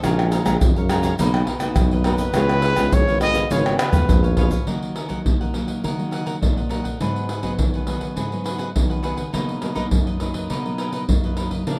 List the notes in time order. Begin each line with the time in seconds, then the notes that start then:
0.03 A#1 A#2 G#3 C#4 F4 G#4 C#5 F5 A#5, pandeiro, tamborim, shaker, surdo
0.19 pandeiro, tamborim, shaker
0.31 G#4 C#5 F5 A#5, pandeiro, shaker
0.45 A#1 G#3 C#4 F4 G#4 C#5 F5 A#5, pandeiro, tamborim, shaker, surdo
0.61 F2, pandeiro, shaker, surdo
0.76 F#2 C#5 F5 A#5, pandeiro, shaker
0.89 G#3 C#4 F4 G#4 C#5 F5 A#5, pandeiro, tamborim, shaker, surdo
1.03 G#4 C#5 F5 A#5, pandeiro, shaker, surdo
1.19 B1 B2 A#3 D#4 F#4 A#4 B4 D#5, pandeiro, shaker, surdo
1.34 pandeiro, tamborim, shaker
1.47 D#4 A#4 B4 D#5, pandeiro, surdo
1.60 A#3 D#4 F#4 A#4 B4 D#5, pandeiro, tamborim, shaker
1.76 B1 F#2, pandeiro, tamborim, shaker, surdo
1.91 A#4 B4 D#5, pandeiro, shaker
2.04 A#3 D#4 F#4 A#4 B4 D#5, pandeiro, tamborim
2.18 A#4 B4 D#5, pandeiro, shaker, surdo
2.34 C#2 C#3 B3 F4 G#4 B4 C#5 F5, pandeiro, tamborim, shaker, surdo
2.49 pandeiro, tamborim, shaker
2.62 F4 B4 C#5 F5, pandeiro
2.76 C#2 B3 F4 G#4 B4 C#5 F5, pandeiro, tamborim, shaker, surdo
2.92 G#1 G#2 C#5, pandeiro, shaker, surdo
3.07 G#1 B4 C#5 F5, pandeiro, shaker
3.20 B3 F4 G#4 B4 C#5 D#5 F5, pandeiro, tamborim, shaker, surdo
3.34 F4 B4 C#5 F5, pandeiro, shaker, surdo
3.50 G#1 C#3 B3 F4 G#4 B4 C#5 F5, pandeiro, shaker, surdo
3.66 pandeiro, tamborim, shaker
3.78 F4 B4 C#5 F5, pandeiro, tamborim, shaker
3.92 B3 F4 G#4 B4 C#5 F5, surdo, pandeiro, shaker
4.09 A#1 G#2, surdo, pandeiro, shaker
4.23 B4 C#5 F5, pandeiro, shaker
4.37 B3 F4 G#4 B4 C#5 F5, pandeiro, surdo
4.51 B4 C#5 F5, pandeiro, shaker, surdo
4.67 D#3 F#3 A#3 D#4 F#4 A#4 D#5 F#5, pandeiro, surdo
4.82 pandeiro
4.95 F#4 A#4 D#5 F#5, pandeiro
5.09 F#3 A#3 D#4 F#4 A#4 D#5 F#5, pandeiro, surdo
5.25 A#2, pandeiro, surdo
5.41 A#4 D#5 F#5, pandeiro
5.53 F#3 A#3 D#4 F#4 A#4 D#5 F#5, pandeiro, surdo
5.67 A#4 D#5 F#5, pandeiro, surdo
5.84 D#3 F#4 A#4 D#5 F#5, pandeiro, surdo
5.99 F#3 A#3 D#4, pandeiro
6.11 F#4 A#4 D#5 F#5, pandeiro
6.26 F#4 A#4 D#5 F#5, pandeiro
6.41 A#2 F#3 A#3 D#4, pandeiro, surdo
6.57 A#4 D#5 F#5, pandeiro
6.69 F#3 A#3 D#4 F#4 A#4 D#5 F#5, pandeiro
6.84 A#4 D#5 F#5, pandeiro, surdo
7.00 G#2 F#3 B3 D#4 F#4 G#4 B4 F#5, pandeiro, surdo
7.16 pandeiro
7.29 F#4 G#4 B4 F#5, pandeiro
7.43 F#3 B3 D#4 F#4 G#4 B4 F#5, pandeiro, surdo
7.59 D#3, pandeiro, surdo
7.74 G#4 B4 F#5, pandeiro
7.87 F#3 B3 D#4 F#4 G#4 B4 F#5, pandeiro, surdo
8.00 G#4 B4 F#5, pandeiro, surdo
8.16 G#2 F#4 G#4 B4 F#5, pandeiro, surdo
8.32 F#3 B3 D#4, pandeiro
8.44 F#4 G#4 B4 F#5, pandeiro
8.58 F#4 G#4 B4 F#5, pandeiro
8.75 D#3 F#3 B3 D#4, pandeiro, surdo
8.90 G#4 B4 F#5, pandeiro
9.03 F#3 B3 D#4 F#4 G#4 B4 F#5, pandeiro
9.16 G#4 B4 F#5, pandeiro, surdo
9.33 B2 F#3 A#3 D#4 A#4 B4 D#5, pandeiro, surdo
9.49 pandeiro
9.61 F#3 A#3 D#4 A#4 B4 D#5, pandeiro
9.75 F#3 A#3 D#4 A#4 B4 D#5, pandeiro, surdo
9.91 F#2, pandeiro, surdo
10.07 A#4 B4 D#5, pandeiro
10.20 F#3 A#3 D#4 A#4 B4 D#5, pandeiro, surdo
10.34 A#4 B4 D#5, pandeiro, surdo
10.50 B2 D#4 A#4 B4 D#5, pandeiro, surdo
10.65 F#3 A#3 D#4, pandeiro
10.78 D#4 A#4 B4 D#5, pandeiro
10.92 D#4 A#4 B4 D#5, pandeiro
11.08 F#2 F#3 A#3 D#4, pandeiro, surdo
11.24 A#4 B4 D#5, pandeiro
11.37 D#4 A#4 B4 D#5, pandeiro
11.51 A#4 B4 D#5, pandeiro, surdo
11.67 A#2 F3 A#3 D4 A#4 D5 F5, pandeiro, surdo